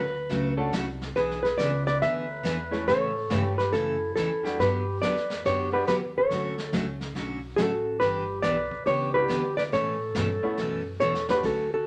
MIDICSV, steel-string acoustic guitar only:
0, 0, Header, 1, 2, 480
1, 0, Start_track
1, 0, Tempo, 428266
1, 1297, Time_signature, 4, 2, 24, 8
1, 13303, End_track
2, 0, Start_track
2, 0, Title_t, "Steel-string acoustic guitar"
2, 0, Program_c, 0, 25
2, 329, Note_on_c, 0, 49, 61
2, 333, Note_on_c, 0, 54, 60
2, 339, Note_on_c, 0, 57, 65
2, 346, Note_on_c, 0, 62, 63
2, 347, Note_on_c, 0, 66, 64
2, 582, Note_off_c, 0, 49, 0
2, 584, Note_off_c, 0, 54, 0
2, 587, Note_off_c, 0, 57, 0
2, 590, Note_off_c, 0, 62, 0
2, 591, Note_off_c, 0, 66, 0
2, 813, Note_on_c, 0, 49, 70
2, 818, Note_on_c, 0, 54, 77
2, 826, Note_on_c, 0, 57, 81
2, 828, Note_on_c, 0, 62, 81
2, 832, Note_on_c, 0, 66, 86
2, 947, Note_off_c, 0, 49, 0
2, 949, Note_off_c, 0, 54, 0
2, 953, Note_off_c, 0, 57, 0
2, 954, Note_off_c, 0, 62, 0
2, 956, Note_off_c, 0, 66, 0
2, 1292, Note_on_c, 0, 52, 57
2, 1301, Note_on_c, 0, 59, 61
2, 1305, Note_on_c, 0, 62, 65
2, 1311, Note_on_c, 0, 68, 64
2, 1544, Note_off_c, 0, 52, 0
2, 1548, Note_off_c, 0, 59, 0
2, 1551, Note_off_c, 0, 62, 0
2, 1553, Note_off_c, 0, 68, 0
2, 1775, Note_on_c, 0, 52, 74
2, 1777, Note_on_c, 0, 59, 77
2, 1784, Note_on_c, 0, 62, 79
2, 1790, Note_on_c, 0, 68, 79
2, 1908, Note_off_c, 0, 52, 0
2, 1909, Note_off_c, 0, 59, 0
2, 1913, Note_off_c, 0, 62, 0
2, 1916, Note_off_c, 0, 68, 0
2, 2265, Note_on_c, 0, 52, 62
2, 2276, Note_on_c, 0, 59, 61
2, 2278, Note_on_c, 0, 62, 66
2, 2287, Note_on_c, 0, 68, 66
2, 2511, Note_off_c, 0, 52, 0
2, 2517, Note_off_c, 0, 59, 0
2, 2518, Note_off_c, 0, 62, 0
2, 2522, Note_off_c, 0, 68, 0
2, 2727, Note_on_c, 0, 52, 76
2, 2736, Note_on_c, 0, 59, 72
2, 2745, Note_on_c, 0, 62, 78
2, 2750, Note_on_c, 0, 68, 82
2, 2865, Note_off_c, 0, 52, 0
2, 2869, Note_off_c, 0, 59, 0
2, 2874, Note_off_c, 0, 62, 0
2, 2876, Note_off_c, 0, 68, 0
2, 3221, Note_on_c, 0, 49, 59
2, 3228, Note_on_c, 0, 57, 60
2, 3231, Note_on_c, 0, 52, 56
2, 3234, Note_on_c, 0, 61, 60
2, 3241, Note_on_c, 0, 69, 59
2, 3470, Note_off_c, 0, 49, 0
2, 3473, Note_off_c, 0, 57, 0
2, 3475, Note_off_c, 0, 52, 0
2, 3476, Note_off_c, 0, 61, 0
2, 3480, Note_off_c, 0, 69, 0
2, 3699, Note_on_c, 0, 49, 75
2, 3702, Note_on_c, 0, 52, 70
2, 3707, Note_on_c, 0, 61, 75
2, 3708, Note_on_c, 0, 57, 82
2, 3710, Note_on_c, 0, 69, 81
2, 3831, Note_off_c, 0, 49, 0
2, 3833, Note_off_c, 0, 52, 0
2, 3835, Note_off_c, 0, 61, 0
2, 3836, Note_off_c, 0, 57, 0
2, 3837, Note_off_c, 0, 69, 0
2, 4174, Note_on_c, 0, 49, 56
2, 4179, Note_on_c, 0, 57, 58
2, 4182, Note_on_c, 0, 52, 60
2, 4184, Note_on_c, 0, 61, 64
2, 4188, Note_on_c, 0, 69, 67
2, 4427, Note_off_c, 0, 49, 0
2, 4429, Note_off_c, 0, 57, 0
2, 4431, Note_off_c, 0, 52, 0
2, 4431, Note_off_c, 0, 61, 0
2, 4434, Note_off_c, 0, 69, 0
2, 4668, Note_on_c, 0, 49, 68
2, 4676, Note_on_c, 0, 52, 76
2, 4676, Note_on_c, 0, 61, 76
2, 4682, Note_on_c, 0, 57, 76
2, 4689, Note_on_c, 0, 69, 80
2, 4796, Note_off_c, 0, 49, 0
2, 4800, Note_off_c, 0, 52, 0
2, 4800, Note_off_c, 0, 61, 0
2, 4803, Note_off_c, 0, 57, 0
2, 4807, Note_off_c, 0, 69, 0
2, 5162, Note_on_c, 0, 50, 60
2, 5165, Note_on_c, 0, 54, 57
2, 5167, Note_on_c, 0, 59, 56
2, 5175, Note_on_c, 0, 62, 63
2, 5179, Note_on_c, 0, 67, 62
2, 5401, Note_off_c, 0, 50, 0
2, 5402, Note_off_c, 0, 54, 0
2, 5403, Note_off_c, 0, 59, 0
2, 5407, Note_off_c, 0, 62, 0
2, 5409, Note_off_c, 0, 67, 0
2, 5639, Note_on_c, 0, 50, 74
2, 5643, Note_on_c, 0, 54, 75
2, 5648, Note_on_c, 0, 59, 81
2, 5655, Note_on_c, 0, 67, 77
2, 5657, Note_on_c, 0, 62, 75
2, 5762, Note_off_c, 0, 50, 0
2, 5764, Note_off_c, 0, 54, 0
2, 5766, Note_off_c, 0, 59, 0
2, 5770, Note_off_c, 0, 67, 0
2, 5771, Note_off_c, 0, 62, 0
2, 6114, Note_on_c, 0, 59, 57
2, 6115, Note_on_c, 0, 50, 54
2, 6117, Note_on_c, 0, 54, 60
2, 6118, Note_on_c, 0, 62, 67
2, 6125, Note_on_c, 0, 67, 69
2, 6357, Note_off_c, 0, 50, 0
2, 6357, Note_off_c, 0, 59, 0
2, 6358, Note_off_c, 0, 54, 0
2, 6359, Note_off_c, 0, 62, 0
2, 6362, Note_off_c, 0, 67, 0
2, 6582, Note_on_c, 0, 50, 79
2, 6585, Note_on_c, 0, 54, 78
2, 6594, Note_on_c, 0, 59, 73
2, 6595, Note_on_c, 0, 62, 78
2, 6599, Note_on_c, 0, 67, 79
2, 6713, Note_off_c, 0, 50, 0
2, 6714, Note_off_c, 0, 54, 0
2, 6719, Note_off_c, 0, 59, 0
2, 6720, Note_off_c, 0, 62, 0
2, 6721, Note_off_c, 0, 67, 0
2, 7066, Note_on_c, 0, 50, 55
2, 7074, Note_on_c, 0, 54, 62
2, 7075, Note_on_c, 0, 57, 61
2, 7080, Note_on_c, 0, 61, 59
2, 7084, Note_on_c, 0, 66, 69
2, 7312, Note_off_c, 0, 50, 0
2, 7316, Note_off_c, 0, 54, 0
2, 7316, Note_off_c, 0, 57, 0
2, 7319, Note_off_c, 0, 61, 0
2, 7321, Note_off_c, 0, 66, 0
2, 7541, Note_on_c, 0, 50, 75
2, 7544, Note_on_c, 0, 54, 74
2, 7551, Note_on_c, 0, 57, 86
2, 7552, Note_on_c, 0, 66, 85
2, 7553, Note_on_c, 0, 61, 80
2, 7672, Note_off_c, 0, 50, 0
2, 7673, Note_off_c, 0, 54, 0
2, 7677, Note_off_c, 0, 57, 0
2, 7677, Note_off_c, 0, 66, 0
2, 7678, Note_off_c, 0, 61, 0
2, 8014, Note_on_c, 0, 50, 64
2, 8019, Note_on_c, 0, 54, 56
2, 8026, Note_on_c, 0, 57, 62
2, 8027, Note_on_c, 0, 66, 66
2, 8028, Note_on_c, 0, 61, 62
2, 8265, Note_off_c, 0, 50, 0
2, 8268, Note_off_c, 0, 54, 0
2, 8271, Note_off_c, 0, 57, 0
2, 8272, Note_off_c, 0, 61, 0
2, 8272, Note_off_c, 0, 66, 0
2, 8494, Note_on_c, 0, 50, 72
2, 8498, Note_on_c, 0, 54, 72
2, 8499, Note_on_c, 0, 57, 83
2, 8500, Note_on_c, 0, 61, 81
2, 8508, Note_on_c, 0, 66, 85
2, 8627, Note_off_c, 0, 50, 0
2, 8630, Note_off_c, 0, 54, 0
2, 8630, Note_off_c, 0, 57, 0
2, 8631, Note_off_c, 0, 61, 0
2, 8635, Note_off_c, 0, 66, 0
2, 8968, Note_on_c, 0, 52, 58
2, 8976, Note_on_c, 0, 59, 68
2, 8978, Note_on_c, 0, 62, 62
2, 8983, Note_on_c, 0, 67, 66
2, 9222, Note_off_c, 0, 52, 0
2, 9225, Note_off_c, 0, 59, 0
2, 9226, Note_off_c, 0, 62, 0
2, 9229, Note_off_c, 0, 67, 0
2, 9443, Note_on_c, 0, 52, 72
2, 9447, Note_on_c, 0, 59, 71
2, 9449, Note_on_c, 0, 62, 76
2, 9455, Note_on_c, 0, 67, 84
2, 9581, Note_off_c, 0, 52, 0
2, 9583, Note_off_c, 0, 59, 0
2, 9584, Note_off_c, 0, 62, 0
2, 9587, Note_off_c, 0, 67, 0
2, 9932, Note_on_c, 0, 52, 55
2, 9941, Note_on_c, 0, 59, 54
2, 9946, Note_on_c, 0, 62, 63
2, 9955, Note_on_c, 0, 67, 67
2, 10183, Note_off_c, 0, 52, 0
2, 10187, Note_off_c, 0, 59, 0
2, 10189, Note_off_c, 0, 62, 0
2, 10194, Note_off_c, 0, 67, 0
2, 10403, Note_on_c, 0, 52, 77
2, 10413, Note_on_c, 0, 59, 83
2, 10417, Note_on_c, 0, 62, 78
2, 10425, Note_on_c, 0, 67, 87
2, 10541, Note_off_c, 0, 52, 0
2, 10545, Note_off_c, 0, 59, 0
2, 10548, Note_off_c, 0, 62, 0
2, 10551, Note_off_c, 0, 67, 0
2, 10897, Note_on_c, 0, 47, 59
2, 10897, Note_on_c, 0, 52, 55
2, 10906, Note_on_c, 0, 57, 66
2, 10907, Note_on_c, 0, 61, 57
2, 10911, Note_on_c, 0, 69, 62
2, 11145, Note_off_c, 0, 47, 0
2, 11145, Note_off_c, 0, 52, 0
2, 11149, Note_off_c, 0, 57, 0
2, 11150, Note_off_c, 0, 61, 0
2, 11152, Note_off_c, 0, 69, 0
2, 11373, Note_on_c, 0, 47, 74
2, 11373, Note_on_c, 0, 52, 70
2, 11381, Note_on_c, 0, 61, 84
2, 11382, Note_on_c, 0, 57, 80
2, 11384, Note_on_c, 0, 69, 81
2, 11505, Note_off_c, 0, 47, 0
2, 11505, Note_off_c, 0, 52, 0
2, 11509, Note_off_c, 0, 61, 0
2, 11510, Note_off_c, 0, 57, 0
2, 11510, Note_off_c, 0, 69, 0
2, 11860, Note_on_c, 0, 47, 58
2, 11867, Note_on_c, 0, 57, 59
2, 11869, Note_on_c, 0, 52, 55
2, 11873, Note_on_c, 0, 61, 65
2, 11874, Note_on_c, 0, 69, 62
2, 12106, Note_off_c, 0, 47, 0
2, 12110, Note_off_c, 0, 57, 0
2, 12111, Note_off_c, 0, 52, 0
2, 12113, Note_off_c, 0, 61, 0
2, 12113, Note_off_c, 0, 69, 0
2, 12331, Note_on_c, 0, 47, 74
2, 12344, Note_on_c, 0, 52, 79
2, 12349, Note_on_c, 0, 57, 75
2, 12349, Note_on_c, 0, 61, 75
2, 12352, Note_on_c, 0, 69, 79
2, 12465, Note_off_c, 0, 47, 0
2, 12471, Note_off_c, 0, 52, 0
2, 12474, Note_off_c, 0, 57, 0
2, 12474, Note_off_c, 0, 61, 0
2, 12475, Note_off_c, 0, 69, 0
2, 12810, Note_on_c, 0, 50, 54
2, 12819, Note_on_c, 0, 54, 54
2, 12820, Note_on_c, 0, 57, 58
2, 12829, Note_on_c, 0, 61, 60
2, 12830, Note_on_c, 0, 66, 64
2, 13062, Note_off_c, 0, 50, 0
2, 13067, Note_off_c, 0, 54, 0
2, 13067, Note_off_c, 0, 57, 0
2, 13072, Note_off_c, 0, 61, 0
2, 13072, Note_off_c, 0, 66, 0
2, 13303, End_track
0, 0, End_of_file